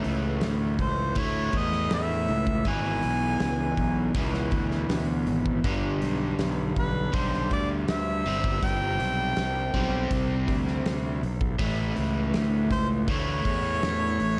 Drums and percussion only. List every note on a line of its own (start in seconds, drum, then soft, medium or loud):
0.04 open hi-hat soft
0.41 snare medium
0.41 open hi-hat medium
0.79 kick medium
0.79 open hi-hat soft
1.15 kick loud
1.15 open hi-hat medium
1.52 kick medium
1.52 open hi-hat soft
1.72 snare soft
1.90 snare loud
1.90 open hi-hat medium
2.28 open hi-hat soft
2.47 kick medium
2.65 kick medium
2.65 open hi-hat medium
3.02 open hi-hat soft
3.40 snare medium
3.40 open hi-hat medium
3.77 kick medium
3.77 open hi-hat soft
4.14 kick loud
4.14 open hi-hat medium
4.34 snare soft
4.51 kick medium
4.51 open hi-hat soft
4.71 snare soft
4.89 snare loud
4.89 open hi-hat medium
5.26 open hi-hat soft
5.46 kick medium
5.64 kick loud
5.64 open hi-hat medium
6.02 open hi-hat soft
6.39 snare medium
6.39 open hi-hat soft
6.76 kick medium
6.76 open hi-hat soft
7.13 kick loud
7.13 open hi-hat medium
7.33 snare soft
7.51 kick medium
7.51 open hi-hat soft
7.88 snare loud
7.88 open hi-hat medium
8.26 open hi-hat soft
8.44 kick medium
8.63 kick medium
8.63 open hi-hat medium
9.00 open hi-hat soft
9.36 snare medium
9.36 open hi-hat medium
9.74 kick medium
9.74 open hi-hat soft
10.11 kick loud
10.11 open hi-hat medium
10.48 kick medium
10.48 open hi-hat soft
10.67 snare soft
10.86 snare loud
10.86 open hi-hat medium
11.23 open hi-hat soft
11.41 kick medium
11.59 kick loud
11.59 open hi-hat medium
11.97 open hi-hat soft
12.34 snare medium
12.34 open hi-hat soft
12.71 kick medium
12.71 open hi-hat soft
13.08 kick loud
13.08 open hi-hat medium
13.45 kick medium
13.45 open hi-hat soft
13.83 snare medium
13.83 open hi-hat medium
14.20 open hi-hat soft